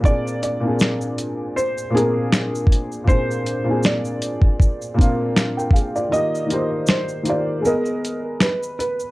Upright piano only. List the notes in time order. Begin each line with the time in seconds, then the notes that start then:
0.00 A#2 A#3 C4
0.05 D4 G#4
0.60 A#2 A#3 C4
0.65 D4 G#4
1.90 A#2 A#3 C4
1.95 D4 A#4
3.04 A#2 A#3 C4
3.09 D4 G#4
3.64 A#2 A#3 C4
3.69 D4 G#4
4.94 A#2 A#3 C4
4.99 D4 F4
5.57 A#4 G5
5.73 G#4 F5
5.96 F4 D5
6.09 D#3 A#3 F4
6.14 G4 D#5
6.47 D#3 A#3 F4
6.52 G4 C5
7.23 D#3 A#3 F4
7.28 G4 D5
7.61 G#3 G#4
7.66 B3 D#5